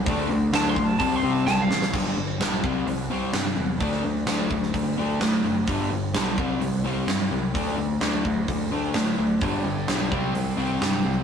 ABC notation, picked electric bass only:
X:1
M:4/4
L:1/8
Q:1/4=128
K:Cmix
V:1 name="Picked electric bass" clef=bass
D,, D,, D,, B,,, C,, C, C,, A,,, | G,,, G,,, B,,, C,, C,,2 G,, E,, | D,, D,, D,, D,, D,,2 A,, ^F,,, | G,,, G,,, =B,,, C,, C,,2 G,, C,, |
D,, D,, D,, D,, D,,2 A,, D,, | G,,, G,,, =B,,, C,, C,,2 G,, C,, |]